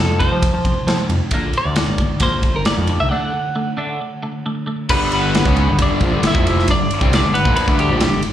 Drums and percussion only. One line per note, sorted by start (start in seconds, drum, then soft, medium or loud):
0.20 kick medium
0.20 ride medium
0.43 kick loud
0.43 ride loud
0.65 kick medium
0.65 ride medium
0.88 snare loud
0.88 ride medium
1.10 ride medium
1.31 kick loud
1.31 ride medium
1.53 ride medium
1.76 snare loud
1.76 ride loud
1.98 kick medium
1.98 ride medium
2.20 kick loud
2.20 ride loud
2.43 kick medium
2.43 ride medium
2.65 snare loud
2.65 ride medium
2.87 ride medium
4.89 kick loud
4.89 crash loud
5.12 ride medium
5.35 snare loud
5.35 ride medium
5.45 kick loud
5.57 ride medium
5.79 kick loud
5.79 ride loud
6.00 kick medium
6.00 ride medium
6.23 snare loud
6.23 ride loud
6.35 kick loud
6.47 ride medium
6.59 snare soft
6.68 kick medium
6.68 ride loud
6.91 ride medium
7.01 kick loud
7.13 snare loud
7.13 ride loud
7.35 ride medium
7.45 kick loud
7.56 ride loud
7.68 kick loud
7.79 ride medium
8.00 snare loud
8.00 ride loud
8.22 ride medium